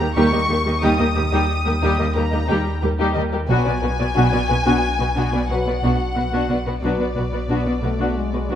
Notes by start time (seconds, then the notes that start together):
Already playing: D#2 A#5
0.00 G4 A#4
0.16 D#2 G3 A#3 D#4 G4 A#4 C#6
0.32 D#2 G3 G4 A#4 D#5
0.49 D#2 G3 G4 A#4
0.65 D#2 G3 G4 A#4 D#5
0.82 D#2 G3 D#4 G4 D#6
0.99 D#2 G3 G4 A#4 D#5
1.15 D#2 G3 G4 A#4
1.32 D#2 G3 D#4 G4
1.66 D#2 G3 G4 A#4
1.82 D#2 G3 D#4 G4
1.99 D#2 G3 G4 A#4 D#5
2.15 D#2 G3 A#3 G4 A#4 A#5
2.31 D#2 G3 G4 A#4 D#5
2.47 D#2 G3 D#4 G4
2.82 D#2 G3 G4 A#4
2.99 D#2 G3 D#4 G4
3.14 D#2 G3 G4 A#4 D#5
3.32 D#2 G3 G4 A#4
3.49 B1 B2 F#3 B3 D4 F#4 B4 G#5
3.66 B2 B3 F#4 B4 D5
3.82 B1 B2 B3 F#4 B4
3.99 B2 B3 F#4 B4 D5
4.15 B1 B2 B3 D4 F#4
4.32 B2 B3 F#4 B4 D5
4.49 B1 B2 B3 F#4 B4
4.65 B2 B3 D4 F#4
4.99 B2 B3 F#4 B4
5.16 B1 B2 B3 D4 F#4
5.33 B2 B3 F#4 B4 D5
5.49 B1 B2 F#3 B3 F#4 B4 F#5
5.66 B2 B3 F#4 B4 D5
5.82 B1 B2 B3 D4 F#4
6.15 B1 B2 B3 F#4 B4
6.32 B2 B3 D4 F#4
6.49 B1 B2 B3 F#4 B4 D5
6.66 B2 B3 F#4 B4
6.81 B1 B2 F#3 B3 D4 F#4 B4 D5
6.98 B2 B3 F#4 B4
7.02 D5
7.14 B1 B2 B3 F#4 B4
7.32 B2 B3 F#4 B4 D5
7.48 B1 B2 B3 D4 F#4
7.65 B2 B3 F#4 B4 D5
7.81 B1 B2 A3 B3 F#4 B4
7.99 B2 B3 D4 F#4
8.17 G#3
8.32 B2 B3 F#4 B4
8.49 B1 B2 F#3 B3 D4 F#4